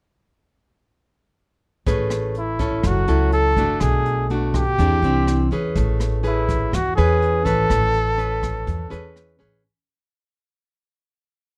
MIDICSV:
0, 0, Header, 1, 5, 480
1, 0, Start_track
1, 0, Key_signature, 3, "major"
1, 0, Tempo, 485830
1, 1844, Time_signature, 4, 2, 24, 8
1, 11440, End_track
2, 0, Start_track
2, 0, Title_t, "Flugelhorn"
2, 0, Program_c, 0, 56
2, 2355, Note_on_c, 0, 64, 78
2, 2831, Note_on_c, 0, 66, 82
2, 2846, Note_off_c, 0, 64, 0
2, 3287, Note_off_c, 0, 66, 0
2, 3293, Note_on_c, 0, 69, 99
2, 3763, Note_on_c, 0, 68, 89
2, 3777, Note_off_c, 0, 69, 0
2, 4245, Note_off_c, 0, 68, 0
2, 4496, Note_on_c, 0, 67, 103
2, 5414, Note_off_c, 0, 67, 0
2, 6196, Note_on_c, 0, 64, 84
2, 6665, Note_on_c, 0, 66, 82
2, 6680, Note_off_c, 0, 64, 0
2, 6867, Note_off_c, 0, 66, 0
2, 6873, Note_on_c, 0, 68, 93
2, 7358, Note_on_c, 0, 69, 109
2, 7373, Note_off_c, 0, 68, 0
2, 9043, Note_off_c, 0, 69, 0
2, 11440, End_track
3, 0, Start_track
3, 0, Title_t, "Nylon-string guitar"
3, 0, Program_c, 1, 24
3, 1842, Note_on_c, 1, 61, 51
3, 1847, Note_on_c, 1, 57, 48
3, 1849, Note_on_c, 1, 68, 55
3, 1853, Note_on_c, 1, 71, 51
3, 2320, Note_off_c, 1, 61, 0
3, 2323, Note_off_c, 1, 68, 0
3, 2326, Note_off_c, 1, 71, 0
3, 2562, Note_on_c, 1, 61, 59
3, 2570, Note_on_c, 1, 64, 50
3, 2571, Note_on_c, 1, 69, 61
3, 2782, Note_off_c, 1, 57, 0
3, 2799, Note_on_c, 1, 54, 48
3, 3005, Note_off_c, 1, 61, 0
3, 3009, Note_off_c, 1, 69, 0
3, 3010, Note_off_c, 1, 64, 0
3, 3043, Note_on_c, 1, 61, 60
3, 3048, Note_on_c, 1, 69, 72
3, 3050, Note_on_c, 1, 64, 59
3, 3486, Note_off_c, 1, 61, 0
3, 3488, Note_off_c, 1, 69, 0
3, 3490, Note_off_c, 1, 64, 0
3, 3530, Note_off_c, 1, 54, 0
3, 3534, Note_on_c, 1, 57, 63
3, 3540, Note_on_c, 1, 62, 52
3, 3544, Note_on_c, 1, 66, 64
3, 3770, Note_on_c, 1, 47, 53
3, 4212, Note_off_c, 1, 57, 0
3, 4215, Note_off_c, 1, 62, 0
3, 4217, Note_off_c, 1, 66, 0
3, 4252, Note_on_c, 1, 57, 51
3, 4258, Note_on_c, 1, 62, 52
3, 4261, Note_on_c, 1, 66, 55
3, 4572, Note_off_c, 1, 57, 0
3, 4576, Note_off_c, 1, 62, 0
3, 4576, Note_off_c, 1, 66, 0
3, 4705, Note_off_c, 1, 47, 0
3, 4730, Note_on_c, 1, 52, 45
3, 4736, Note_on_c, 1, 60, 44
3, 4737, Note_on_c, 1, 62, 55
3, 4745, Note_on_c, 1, 68, 54
3, 4933, Note_off_c, 1, 60, 0
3, 4934, Note_off_c, 1, 62, 0
3, 4938, Note_off_c, 1, 68, 0
3, 4981, Note_on_c, 1, 60, 62
3, 4987, Note_on_c, 1, 62, 57
3, 5417, Note_off_c, 1, 60, 0
3, 5420, Note_off_c, 1, 62, 0
3, 5453, Note_on_c, 1, 61, 59
3, 5459, Note_on_c, 1, 68, 63
3, 5466, Note_on_c, 1, 71, 60
3, 5666, Note_off_c, 1, 52, 0
3, 5694, Note_on_c, 1, 57, 53
3, 6146, Note_off_c, 1, 61, 0
3, 6149, Note_off_c, 1, 68, 0
3, 6157, Note_off_c, 1, 71, 0
3, 6157, Note_on_c, 1, 61, 56
3, 6162, Note_on_c, 1, 68, 54
3, 6168, Note_on_c, 1, 71, 59
3, 6629, Note_off_c, 1, 57, 0
3, 6637, Note_on_c, 1, 52, 48
3, 6641, Note_off_c, 1, 61, 0
3, 6643, Note_off_c, 1, 68, 0
3, 6647, Note_off_c, 1, 71, 0
3, 6890, Note_on_c, 1, 61, 56
3, 6895, Note_on_c, 1, 68, 63
3, 6897, Note_on_c, 1, 71, 67
3, 7333, Note_off_c, 1, 61, 0
3, 7333, Note_off_c, 1, 68, 0
3, 7336, Note_off_c, 1, 71, 0
3, 7361, Note_on_c, 1, 61, 54
3, 7373, Note_on_c, 1, 71, 75
3, 7580, Note_off_c, 1, 52, 0
3, 7603, Note_on_c, 1, 57, 44
3, 8047, Note_off_c, 1, 61, 0
3, 8053, Note_off_c, 1, 71, 0
3, 8080, Note_on_c, 1, 61, 56
3, 8084, Note_on_c, 1, 71, 61
3, 8542, Note_off_c, 1, 57, 0
3, 8560, Note_on_c, 1, 52, 50
3, 8767, Note_off_c, 1, 61, 0
3, 8768, Note_off_c, 1, 71, 0
3, 8796, Note_on_c, 1, 61, 60
3, 8803, Note_on_c, 1, 68, 51
3, 8806, Note_on_c, 1, 71, 74
3, 9244, Note_off_c, 1, 61, 0
3, 9247, Note_off_c, 1, 68, 0
3, 9249, Note_off_c, 1, 71, 0
3, 9275, Note_on_c, 1, 61, 61
3, 9284, Note_on_c, 1, 68, 66
3, 9286, Note_on_c, 1, 71, 65
3, 9500, Note_off_c, 1, 52, 0
3, 9504, Note_off_c, 1, 61, 0
3, 9506, Note_off_c, 1, 68, 0
3, 9508, Note_off_c, 1, 71, 0
3, 11440, End_track
4, 0, Start_track
4, 0, Title_t, "Upright bass"
4, 0, Program_c, 2, 32
4, 1842, Note_on_c, 2, 33, 77
4, 2764, Note_off_c, 2, 33, 0
4, 2802, Note_on_c, 2, 30, 94
4, 3026, Note_off_c, 2, 30, 0
4, 3043, Note_on_c, 2, 37, 80
4, 3491, Note_off_c, 2, 37, 0
4, 3523, Note_on_c, 2, 30, 73
4, 3747, Note_off_c, 2, 30, 0
4, 3764, Note_on_c, 2, 35, 78
4, 4687, Note_off_c, 2, 35, 0
4, 4730, Note_on_c, 2, 40, 98
4, 4952, Note_off_c, 2, 40, 0
4, 4962, Note_on_c, 2, 36, 91
4, 5412, Note_off_c, 2, 36, 0
4, 5443, Note_on_c, 2, 40, 71
4, 5669, Note_off_c, 2, 40, 0
4, 5688, Note_on_c, 2, 33, 88
4, 6610, Note_off_c, 2, 33, 0
4, 6658, Note_on_c, 2, 40, 91
4, 6878, Note_off_c, 2, 40, 0
4, 6897, Note_on_c, 2, 40, 92
4, 7341, Note_off_c, 2, 40, 0
4, 7375, Note_on_c, 2, 33, 84
4, 7596, Note_off_c, 2, 33, 0
4, 7612, Note_on_c, 2, 33, 96
4, 8531, Note_off_c, 2, 33, 0
4, 8568, Note_on_c, 2, 40, 91
4, 8792, Note_off_c, 2, 40, 0
4, 8814, Note_on_c, 2, 40, 84
4, 9258, Note_off_c, 2, 40, 0
4, 9298, Note_on_c, 2, 33, 77
4, 9517, Note_off_c, 2, 33, 0
4, 11440, End_track
5, 0, Start_track
5, 0, Title_t, "Drums"
5, 1842, Note_on_c, 9, 42, 62
5, 1843, Note_on_c, 9, 36, 63
5, 1940, Note_off_c, 9, 42, 0
5, 1942, Note_off_c, 9, 36, 0
5, 2078, Note_on_c, 9, 37, 59
5, 2078, Note_on_c, 9, 42, 41
5, 2177, Note_off_c, 9, 37, 0
5, 2177, Note_off_c, 9, 42, 0
5, 2318, Note_on_c, 9, 42, 42
5, 2417, Note_off_c, 9, 42, 0
5, 2560, Note_on_c, 9, 42, 41
5, 2562, Note_on_c, 9, 36, 50
5, 2658, Note_off_c, 9, 42, 0
5, 2661, Note_off_c, 9, 36, 0
5, 2800, Note_on_c, 9, 37, 58
5, 2800, Note_on_c, 9, 42, 57
5, 2802, Note_on_c, 9, 36, 56
5, 2899, Note_off_c, 9, 37, 0
5, 2899, Note_off_c, 9, 42, 0
5, 2901, Note_off_c, 9, 36, 0
5, 3039, Note_on_c, 9, 42, 50
5, 3138, Note_off_c, 9, 42, 0
5, 3281, Note_on_c, 9, 42, 45
5, 3380, Note_off_c, 9, 42, 0
5, 3522, Note_on_c, 9, 36, 50
5, 3524, Note_on_c, 9, 42, 45
5, 3621, Note_off_c, 9, 36, 0
5, 3623, Note_off_c, 9, 42, 0
5, 3757, Note_on_c, 9, 37, 59
5, 3757, Note_on_c, 9, 42, 62
5, 3763, Note_on_c, 9, 36, 60
5, 3856, Note_off_c, 9, 37, 0
5, 3856, Note_off_c, 9, 42, 0
5, 3861, Note_off_c, 9, 36, 0
5, 4007, Note_on_c, 9, 42, 40
5, 4105, Note_off_c, 9, 42, 0
5, 4248, Note_on_c, 9, 42, 37
5, 4346, Note_off_c, 9, 42, 0
5, 4486, Note_on_c, 9, 36, 60
5, 4489, Note_on_c, 9, 37, 55
5, 4489, Note_on_c, 9, 42, 39
5, 4585, Note_off_c, 9, 36, 0
5, 4588, Note_off_c, 9, 37, 0
5, 4588, Note_off_c, 9, 42, 0
5, 4727, Note_on_c, 9, 36, 59
5, 4737, Note_on_c, 9, 42, 52
5, 4826, Note_off_c, 9, 36, 0
5, 4836, Note_off_c, 9, 42, 0
5, 4974, Note_on_c, 9, 42, 43
5, 5072, Note_off_c, 9, 42, 0
5, 5210, Note_on_c, 9, 37, 55
5, 5210, Note_on_c, 9, 42, 33
5, 5308, Note_off_c, 9, 37, 0
5, 5308, Note_off_c, 9, 42, 0
5, 5450, Note_on_c, 9, 42, 35
5, 5549, Note_off_c, 9, 42, 0
5, 5687, Note_on_c, 9, 36, 61
5, 5687, Note_on_c, 9, 42, 59
5, 5785, Note_off_c, 9, 42, 0
5, 5786, Note_off_c, 9, 36, 0
5, 5928, Note_on_c, 9, 37, 52
5, 5928, Note_on_c, 9, 42, 39
5, 6027, Note_off_c, 9, 37, 0
5, 6027, Note_off_c, 9, 42, 0
5, 6169, Note_on_c, 9, 42, 44
5, 6268, Note_off_c, 9, 42, 0
5, 6409, Note_on_c, 9, 36, 59
5, 6410, Note_on_c, 9, 42, 44
5, 6508, Note_off_c, 9, 36, 0
5, 6509, Note_off_c, 9, 42, 0
5, 6651, Note_on_c, 9, 36, 58
5, 6653, Note_on_c, 9, 37, 60
5, 6653, Note_on_c, 9, 42, 55
5, 6750, Note_off_c, 9, 36, 0
5, 6752, Note_off_c, 9, 37, 0
5, 6752, Note_off_c, 9, 42, 0
5, 6895, Note_on_c, 9, 42, 45
5, 6994, Note_off_c, 9, 42, 0
5, 7133, Note_on_c, 9, 42, 40
5, 7232, Note_off_c, 9, 42, 0
5, 7367, Note_on_c, 9, 42, 45
5, 7369, Note_on_c, 9, 36, 52
5, 7466, Note_off_c, 9, 42, 0
5, 7467, Note_off_c, 9, 36, 0
5, 7608, Note_on_c, 9, 36, 64
5, 7611, Note_on_c, 9, 37, 64
5, 7611, Note_on_c, 9, 42, 55
5, 7706, Note_off_c, 9, 36, 0
5, 7710, Note_off_c, 9, 37, 0
5, 7710, Note_off_c, 9, 42, 0
5, 7844, Note_on_c, 9, 42, 41
5, 7943, Note_off_c, 9, 42, 0
5, 8092, Note_on_c, 9, 42, 43
5, 8191, Note_off_c, 9, 42, 0
5, 8328, Note_on_c, 9, 36, 54
5, 8329, Note_on_c, 9, 37, 59
5, 8329, Note_on_c, 9, 42, 43
5, 8427, Note_off_c, 9, 36, 0
5, 8427, Note_off_c, 9, 37, 0
5, 8427, Note_off_c, 9, 42, 0
5, 8569, Note_on_c, 9, 36, 54
5, 8572, Note_on_c, 9, 42, 56
5, 8668, Note_off_c, 9, 36, 0
5, 8671, Note_off_c, 9, 42, 0
5, 8814, Note_on_c, 9, 42, 47
5, 8913, Note_off_c, 9, 42, 0
5, 9050, Note_on_c, 9, 37, 48
5, 9050, Note_on_c, 9, 42, 34
5, 9149, Note_off_c, 9, 37, 0
5, 9149, Note_off_c, 9, 42, 0
5, 9293, Note_on_c, 9, 42, 42
5, 9392, Note_off_c, 9, 42, 0
5, 11440, End_track
0, 0, End_of_file